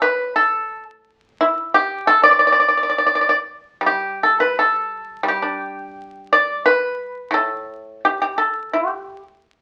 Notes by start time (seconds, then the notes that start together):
Already playing: A2
0.02 B4
0.36 A4
1.41 E4
1.74 G4
2.07 A4
2.23 D5
2.31 D5
2.39 D5
2.47 D5
2.52 D5
2.60 D5
2.68 D5
2.77 D5
2.83 D5
2.89 D5
2.98 D5
3.06 D5
3.15 D5
3.21 D5
3.29 D5
3.81 G3
3.86 G4
4.23 A4
4.40 B4
4.59 A4
5.23 G3
5.28 G4
5.42 D4
6.33 D5
6.66 B4
7.31 A2 A4
8.05 G4
8.22 G4
8.38 A4
8.73 G4